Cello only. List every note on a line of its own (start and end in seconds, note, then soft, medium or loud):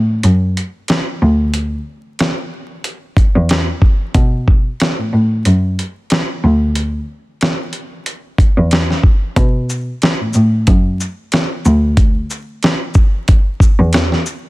0.00 0.16 A2 medium
0.24 0.49 F#2 medium
1.22 1.72 D2 medium
3.36 3.61 E2 medium
4.15 4.66 B2 loud
4.99 5.09 A2 soft
5.13 5.38 A2 medium
5.46 5.71 F#2 loud
6.44 6.94 D2 loud
8.57 8.83 E2 medium
9.37 9.87 B2 loud
10.20 10.31 A2 soft
10.35 10.60 A2 medium
10.68 10.93 F#2 loud
11.65 12.16 D2 loud
13.79 14.04 E2 medium